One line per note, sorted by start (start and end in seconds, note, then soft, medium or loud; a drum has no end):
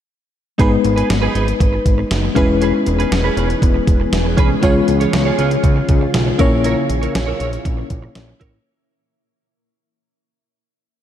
0.58 0.78 G#1 loud
0.58 2.32 G#3 medium
0.58 2.34 G#3 medium
0.58 2.32 B3 medium
0.58 4.59 B3 medium
0.58 0.75 D#4 medium
0.58 2.33 D#4 medium
0.58 2.34 D#4 medium
0.58 0.72 G#4 medium
0.58 2.33 B4 medium
0.58 0.70 B4 medium
0.58 kick medium
0.58 closed hi-hat medium
0.72 muted clean electric guitar stroke soft
0.84 1.03 G#1 loud
0.84 muted clean electric guitar stroke soft
0.84 closed hi-hat medium
0.96 1.08 D#4 soft
0.96 1.09 G#4 medium
0.96 1.09 B4 medium
0.96 closed hi-hat medium
1.09 1.28 G#1 loud
1.09 muted clean electric guitar stroke soft
1.09 snare loud
1.09 closed hi-hat medium
1.22 1.33 D#4 medium
1.22 1.34 G#4 medium
1.22 1.35 B4 medium
1.34 1.53 G#1 medium
1.34 1.47 D#4 medium
1.34 1.48 G#4 medium
1.34 1.46 B4 medium
1.34 closed hi-hat medium
1.47 muted clean electric guitar stroke soft
1.47 closed hi-hat soft
1.60 1.79 G#1 loud
1.60 muted clean electric guitar stroke soft
1.60 kick medium
1.60 closed hi-hat medium
1.73 muted clean electric guitar stroke soft
1.86 2.04 G#1 medium
1.86 kick medium
1.86 closed hi-hat medium
1.98 muted clean electric guitar stroke soft
2.11 2.29 F#1 medium
2.11 snare loud
2.11 closed hi-hat medium
2.23 muted clean electric guitar stroke soft
2.35 2.72 E1 medium
2.35 4.61 E3 medium
2.35 4.33 G#3 medium
2.35 2.52 C#4 medium
2.35 4.33 C#4 medium
2.35 8.63 C#4 medium
2.35 4.34 E4 medium
2.35 4.61 G#4 medium
2.35 2.49 G#4 medium
2.35 4.34 B4 medium
2.35 2.47 B4 medium
2.35 kick loud
2.35 closed hi-hat medium
2.49 muted clean electric guitar stroke soft
2.61 2.77 C#4 medium
2.61 2.74 G#4 medium
2.61 2.73 B4 medium
2.61 closed hi-hat medium
2.74 muted clean electric guitar stroke soft
2.86 3.05 E1 loud
2.86 muted clean electric guitar stroke soft
2.86 closed hi-hat medium
2.99 3.10 C#4 soft
2.99 3.11 G#4 soft
2.99 3.11 B4 medium
2.99 closed hi-hat soft
3.12 3.30 E1 loud
3.12 muted clean electric guitar stroke soft
3.12 snare loud
3.12 closed hi-hat medium
3.24 3.35 C#4 medium
3.24 3.36 G#4 medium
3.24 3.37 B4 medium
3.36 3.55 E1 medium
3.36 3.49 C#4 medium
3.36 3.50 G#4 medium
3.36 3.48 B4 medium
3.36 closed hi-hat medium
3.49 muted clean electric guitar stroke soft
3.49 closed hi-hat soft
3.62 3.80 E1 loud
3.62 muted clean electric guitar stroke soft
3.62 kick medium
3.62 closed hi-hat medium
3.74 muted clean electric guitar stroke soft
3.87 4.05 E1 medium
3.87 kick medium
3.87 closed hi-hat medium
4.00 muted clean electric guitar stroke soft
4.13 4.39 E1 medium
4.13 snare loud
4.13 closed hi-hat medium
4.25 muted clean electric guitar stroke soft
4.37 4.56 C2 medium
4.37 4.54 C#4 medium
4.37 4.50 G#4 medium
4.37 4.49 B4 medium
4.37 kick medium
4.37 closed hi-hat medium
4.50 muted clean electric guitar stroke soft
4.61 4.81 C#2 loud
4.61 6.37 C#3 medium
4.61 6.35 G#3 medium
4.61 6.35 C#4 medium
4.61 4.79 F4 medium
4.61 6.37 F4 medium
4.61 6.36 F4 medium
4.61 6.37 G#4 medium
4.61 4.75 G#4 medium
4.61 6.36 C#5 medium
4.61 4.74 C#5 medium
4.61 kick medium
4.61 closed hi-hat medium
4.75 muted clean electric guitar stroke soft
4.88 5.07 C#2 medium
4.88 muted clean electric guitar stroke soft
4.88 closed hi-hat medium
5.00 5.12 F4 medium
5.00 5.13 G#4 medium
5.00 5.13 C#5 medium
5.00 closed hi-hat soft
5.13 5.32 C#2 medium
5.13 muted clean electric guitar stroke soft
5.13 snare loud
5.13 closed hi-hat medium
5.25 5.37 F4 medium
5.25 5.38 G#4 medium
5.25 5.39 C#5 medium
5.38 5.57 C#2 medium
5.38 5.51 F4 medium
5.38 5.51 G#4 medium
5.38 5.49 C#5 medium
5.38 closed hi-hat medium
5.50 muted clean electric guitar stroke soft
5.50 closed hi-hat soft
5.63 5.82 C#2 loud
5.63 muted clean electric guitar stroke soft
5.63 kick medium
5.63 closed hi-hat medium
5.76 muted clean electric guitar stroke soft
5.89 6.07 C#2 loud
5.89 kick medium
5.89 closed hi-hat medium
6.01 muted clean electric guitar stroke soft
6.14 6.32 B1 medium
6.14 snare loud
6.14 closed hi-hat medium
6.26 muted clean electric guitar stroke soft
6.38 6.76 A#1 medium
6.38 8.36 A#3 medium
6.38 8.64 A#3 medium
6.38 8.37 C#4 medium
6.38 6.55 E4 medium
6.38 8.64 E4 medium
6.38 8.37 E4 medium
6.38 6.52 A#4 medium
6.38 8.38 C#5 medium
6.38 6.50 C#5 medium
6.38 kick loud
6.38 closed hi-hat medium
6.51 muted clean electric guitar stroke soft
6.64 6.81 E4 medium
6.64 6.77 A#4 medium
6.64 6.76 C#5 medium
6.64 closed hi-hat medium
6.77 muted clean electric guitar stroke soft
6.89 7.08 A#1 loud
6.89 muted clean electric guitar stroke soft
6.89 closed hi-hat medium
7.02 7.13 E4 soft
7.02 7.14 A#4 medium
7.02 7.15 C#5 medium
7.02 closed hi-hat soft
7.15 7.33 A#1 medium
7.15 snare loud
7.15 closed hi-hat medium
7.26 7.38 E4 medium
7.26 7.39 A#4 medium
7.26 7.40 C#5 medium
7.39 7.58 A#1 medium
7.39 7.52 E4 soft
7.39 7.52 A#4 medium
7.39 7.51 C#5 medium
7.39 closed hi-hat medium
7.52 muted clean electric guitar stroke soft
7.52 closed hi-hat soft
7.65 7.84 A#1 loud
7.65 muted clean electric guitar stroke soft
7.65 kick medium
7.65 closed hi-hat medium
7.77 muted clean electric guitar stroke soft
7.90 8.09 A#1 medium
7.90 kick medium
7.90 closed hi-hat medium
8.02 muted clean electric guitar stroke soft
8.15 8.34 A#1 medium
8.15 snare loud
8.15 closed hi-hat medium
8.28 muted clean electric guitar stroke soft
8.40 8.59 A1 medium
8.40 8.57 E4 medium
8.40 8.53 A#4 medium
8.40 8.52 C#5 medium
8.40 kick medium
8.40 closed hi-hat medium
8.53 muted clean electric guitar stroke soft